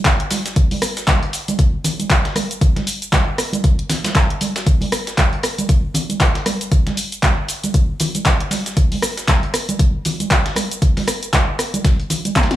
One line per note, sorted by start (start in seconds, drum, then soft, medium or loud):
0.05 kick loud
0.05 snare loud
0.05 clap loud
0.05 closed hi-hat medium
0.05 shaker soft
0.20 closed hi-hat soft
0.31 snare medium
0.31 closed hi-hat medium
0.31 open hi-hat loud
0.31 high conga loud
0.31 shaker medium
0.46 snare medium
0.46 closed hi-hat medium
0.46 shaker soft
0.56 kick loud
0.56 closed hi-hat medium
0.56 shaker soft
0.71 open hi-hat medium
0.71 high conga medium
0.82 cross-stick medium
0.82 closed hi-hat medium
0.82 open hi-hat loud
0.82 shaker medium
0.97 snare soft
0.97 closed hi-hat medium
0.97 shaker soft
1.07 kick loud
1.07 snare loud
1.07 clap loud
1.07 closed hi-hat medium
1.07 high conga medium
1.07 shaker soft
1.23 closed hi-hat soft
1.33 closed hi-hat medium
1.33 open hi-hat loud
1.33 shaker medium
1.48 closed hi-hat soft
1.48 closed hi-hat medium
1.48 high conga loud
1.48 shaker soft
1.59 kick loud
1.59 closed hi-hat medium
1.59 shaker soft
1.84 closed hi-hat medium
1.84 open hi-hat loud
1.84 low conga loud
1.84 shaker medium
2.00 closed hi-hat medium
2.00 high conga medium
2.00 shaker soft
2.10 kick loud
2.10 snare loud
2.10 clap loud
2.10 closed hi-hat medium
2.10 shaker soft
2.25 snare medium
2.25 closed hi-hat soft
2.35 cross-stick medium
2.35 closed hi-hat medium
2.35 open hi-hat loud
2.35 high conga medium
2.35 shaker medium
2.51 closed hi-hat medium
2.51 shaker soft
2.61 kick loud
2.61 closed hi-hat medium
2.61 shaker soft
2.76 snare soft
2.76 closed hi-hat soft
2.76 high conga medium
2.87 closed hi-hat medium
2.87 open hi-hat loud
2.87 shaker medium
3.02 closed hi-hat soft
3.02 shaker soft
3.12 kick loud
3.12 snare loud
3.12 clap loud
3.12 closed hi-hat medium
3.12 high conga medium
3.12 shaker soft
3.38 cross-stick medium
3.38 closed hi-hat medium
3.38 open hi-hat loud
3.38 shaker medium
3.53 closed hi-hat soft
3.53 high conga medium
3.53 shaker soft
3.64 kick loud
3.64 closed hi-hat medium
3.64 shaker soft
3.79 closed hi-hat soft
3.90 snare loud
3.90 closed hi-hat medium
3.90 open hi-hat loud
3.90 low conga loud
3.90 shaker medium
4.04 snare loud
4.04 closed hi-hat medium
4.04 high conga medium
4.04 shaker soft
4.15 kick loud
4.15 snare loud
4.15 clap loud
4.15 closed hi-hat medium
4.15 shaker soft
4.30 closed hi-hat soft
4.41 closed hi-hat medium
4.41 open hi-hat loud
4.41 high conga loud
4.41 shaker medium
4.56 snare loud
4.56 closed hi-hat medium
4.56 shaker soft
4.66 kick loud
4.66 closed hi-hat medium
4.66 shaker soft
4.81 open hi-hat medium
4.81 high conga medium
4.92 cross-stick medium
4.92 closed hi-hat medium
4.92 open hi-hat loud
4.92 shaker medium
5.07 snare soft
5.07 closed hi-hat soft
5.07 shaker soft
5.18 kick loud
5.18 snare loud
5.18 clap loud
5.18 closed hi-hat medium
5.18 high conga medium
5.18 shaker soft
5.33 closed hi-hat soft
5.43 cross-stick medium
5.43 closed hi-hat medium
5.43 open hi-hat loud
5.43 shaker medium
5.58 closed hi-hat soft
5.58 closed hi-hat medium
5.58 high conga loud
5.58 shaker soft
5.69 kick loud
5.69 closed hi-hat medium
5.69 shaker soft
5.94 closed hi-hat medium
5.94 open hi-hat loud
5.94 low conga medium
5.94 shaker medium
6.09 closed hi-hat medium
6.09 high conga medium
6.09 shaker soft
6.20 kick loud
6.20 snare loud
6.20 clap loud
6.20 closed hi-hat medium
6.20 shaker soft
6.35 snare medium
6.35 closed hi-hat soft
6.46 cross-stick medium
6.46 closed hi-hat medium
6.46 open hi-hat loud
6.46 high conga medium
6.46 shaker medium
6.61 closed hi-hat medium
6.61 shaker soft
6.72 kick loud
6.72 closed hi-hat medium
6.72 shaker soft
6.87 snare soft
6.87 closed hi-hat soft
6.87 high conga medium
6.97 closed hi-hat medium
6.97 open hi-hat loud
6.97 shaker medium
7.12 closed hi-hat medium
7.12 shaker soft
7.23 kick loud
7.23 snare loud
7.23 clap loud
7.23 closed hi-hat medium
7.23 high conga medium
7.23 shaker soft
7.48 closed hi-hat medium
7.48 open hi-hat loud
7.48 shaker medium
7.64 closed hi-hat medium
7.64 high conga medium
7.64 shaker soft
7.74 kick loud
7.74 closed hi-hat medium
7.74 shaker soft
8.00 closed hi-hat medium
8.00 open hi-hat loud
8.00 low conga medium
8.00 shaker medium
8.15 closed hi-hat medium
8.15 high conga medium
8.15 shaker soft
8.25 kick loud
8.25 snare loud
8.25 clap loud
8.25 closed hi-hat medium
8.25 shaker soft
8.40 closed hi-hat soft
8.51 snare medium
8.51 closed hi-hat medium
8.51 open hi-hat loud
8.51 high conga loud
8.51 shaker medium
8.66 snare soft
8.66 closed hi-hat medium
8.66 shaker soft
8.77 kick loud
8.77 closed hi-hat medium
8.77 shaker soft
8.92 open hi-hat medium
8.92 high conga medium
9.02 cross-stick medium
9.02 closed hi-hat medium
9.02 open hi-hat loud
9.02 shaker medium
9.17 snare soft
9.17 closed hi-hat medium
9.17 shaker soft
9.28 kick loud
9.28 snare loud
9.28 clap loud
9.28 closed hi-hat medium
9.28 high conga medium
9.28 shaker soft
9.43 closed hi-hat soft
9.54 cross-stick medium
9.54 closed hi-hat medium
9.54 open hi-hat loud
9.54 shaker medium
9.69 closed hi-hat soft
9.69 closed hi-hat medium
9.69 high conga medium
9.69 shaker soft
9.79 kick loud
9.79 closed hi-hat medium
9.79 shaker soft
10.05 closed hi-hat medium
10.05 open hi-hat medium
10.05 low conga medium
10.05 shaker medium
10.20 closed hi-hat medium
10.20 high conga medium
10.20 shaker soft
10.31 kick loud
10.31 snare loud
10.31 clap loud
10.31 closed hi-hat medium
10.31 shaker soft
10.46 snare medium
10.46 closed hi-hat soft
10.56 cross-stick medium
10.56 closed hi-hat medium
10.56 open hi-hat loud
10.56 high conga medium
10.56 shaker medium
10.71 closed hi-hat medium
10.71 shaker soft
10.82 kick loud
10.82 closed hi-hat medium
10.82 shaker soft
10.97 snare soft
10.97 open hi-hat medium
10.97 high conga medium
11.08 cross-stick medium
11.08 closed hi-hat medium
11.08 open hi-hat loud
11.08 shaker medium
11.23 closed hi-hat medium
11.23 shaker soft
11.33 kick loud
11.33 snare loud
11.33 clap loud
11.33 closed hi-hat medium
11.33 high conga medium
11.33 shaker soft
11.59 cross-stick medium
11.59 closed hi-hat medium
11.59 open hi-hat loud
11.59 shaker medium
11.74 closed hi-hat medium
11.74 high conga medium
11.74 shaker soft
11.85 kick loud
11.85 snare loud
11.85 closed hi-hat medium
11.85 shaker soft
12.00 closed hi-hat soft
12.10 closed hi-hat medium
12.10 open hi-hat loud
12.10 low conga loud
12.10 shaker medium
12.25 closed hi-hat medium
12.25 closed hi-hat soft
12.25 high conga medium
12.25 shaker soft
12.36 kick loud
12.36 snare medium
12.36 clap loud
12.36 closed hi-hat medium
12.36 high tom medium
12.36 shaker soft
12.43 snare medium
12.43 closed hi-hat medium
12.51 snare medium
12.51 closed hi-hat soft
12.51 closed hi-hat medium
12.51 high tom medium